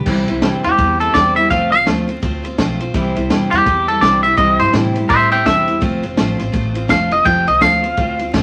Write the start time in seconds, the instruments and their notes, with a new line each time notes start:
0.06 upright bass C2, steel-string acoustic guitar C3 E3 G3 C4 E4 C5, kick, crash
0.28 upright bass C2, steel-string acoustic guitar G3 C4 E4 C5, ride
0.42 upright bass E2, steel-string acoustic guitar C3 E3 G3 C4 E4 C5, snare, ride
0.64 upright bass E2, steel-string acoustic guitar G3 C4 E4 C5, clean electric guitar G4, snare, ride
0.77 upright bass E2, steel-string acoustic guitar G3 C4 E4 C5, kick, ride
1.00 steel-string acoustic guitar G3 C4 E4 C5, clean electric guitar A4, ride
1.14 upright bass E2, steel-string acoustic guitar C3 E3 G3 C4 E4 C5, clean electric guitar D5, kick, snare, ride
1.36 steel-string acoustic guitar G3 C4 E4 C5, clean electric guitar E5, ride
1.50 upright bass F1, steel-string acoustic guitar F3 A3 C4 F4 C5, clean electric guitar F5, kick, ride
1.72 upright bass C2, steel-string acoustic guitar C4 F4 C5, clean electric guitar F5, ride
1.86 upright bass D2, steel-string acoustic guitar F3 A3 C4 F4 C5, snare, ride
2.08 steel-string acoustic guitar C4 F4 C5, ride
2.22 upright bass D2, steel-string acoustic guitar A3 C4 F4 C5, kick, ride
2.44 steel-string acoustic guitar C4 F4 C5, ride
2.58 upright bass B1, steel-string acoustic guitar F3 A3 C4 F4 C5, kick, snare, ride
2.79 steel-string acoustic guitar C4 F4 C5, ride
2.94 upright bass C2, steel-string acoustic guitar C3 E3 G3 C4 E4 C5, kick, ride
3.15 upright bass C2, steel-string acoustic guitar G3 C4 E4 C5, ride
3.30 upright bass E2, steel-string acoustic guitar C3 E3 G3 C4 E4 C5, snare, ride
3.51 upright bass E2, steel-string acoustic guitar G3 C4 E4 C5, clean electric guitar G4, snare, ride
3.65 upright bass E2, steel-string acoustic guitar G3 C4 E4 C5, kick, ride
3.87 steel-string acoustic guitar G3 C4 E4 C5, clean electric guitar A4, ride
4.01 upright bass C2, steel-string acoustic guitar C3 E3 G3 C4 E4 C5, clean electric guitar D5, kick, snare, ride
4.23 steel-string acoustic guitar G3 C4 E4 C5, clean electric guitar E5, ride
4.37 upright bass C2, steel-string acoustic guitar C3 E3 G3 C4 E4 C5, clean electric guitar D#5, kick, ride
4.58 upright bass G2, steel-string acoustic guitar G3 C4 E4 C5, clean electric guitar C5, ride
4.73 upright bass A2, steel-string acoustic guitar C3 E3 G3 C4 E4 C5, snare, ride
4.94 steel-string acoustic guitar G3 C4 E4 C5, ride
5.08 upright bass A2, steel-string acoustic guitar G3 C4 E4 C5, clean electric guitar C5 E5, kick, ride
5.30 steel-string acoustic guitar G3 C4 E4 C5, clean electric guitar E5 G5, ride
5.45 upright bass E2, steel-string acoustic guitar C3 E3 G3 C4 E4 C5, clean electric guitar E5, kick, snare, ride
5.67 steel-string acoustic guitar G3 C4 E4 C5, ride
5.81 upright bass F1, steel-string acoustic guitar F3 A3 C4 F4 C5, kick, ride
6.03 upright bass F1, steel-string acoustic guitar C4 F4 C5, ride
6.17 upright bass A1, steel-string acoustic guitar F3 A3 C4 F4 C5, snare, ride
6.38 upright bass A1, steel-string acoustic guitar C4 F4 C5, snare, ride
6.52 upright bass A1, steel-string acoustic guitar A3 C4 F4 C5, kick, ride
6.74 steel-string acoustic guitar C4 F4 C5, ride
6.88 upright bass F1, steel-string acoustic guitar F3 A3 C4 F4 C5, clean electric guitar F5, kick, snare, ride
7.10 steel-string acoustic guitar C4 F4 C5, clean electric guitar D#5, ride
7.24 upright bass F1, steel-string acoustic guitar F3 A3 C4 F4 C5, clean electric guitar G5, kick, ride
7.46 upright bass C2, steel-string acoustic guitar C4 F4 C5, clean electric guitar D#5, ride
7.61 upright bass D2, steel-string acoustic guitar F3 A3 C4 F4 C5, clean electric guitar F5, snare, ride
7.83 steel-string acoustic guitar C4 F4 C5, ride
7.97 upright bass D2, steel-string acoustic guitar A3 C4 F4 C5, kick, ride
8.19 steel-string acoustic guitar C4 F4 C5, ride
8.33 upright bass A1, steel-string acoustic guitar F3 A3 C4 F4 C5, kick, snare, ride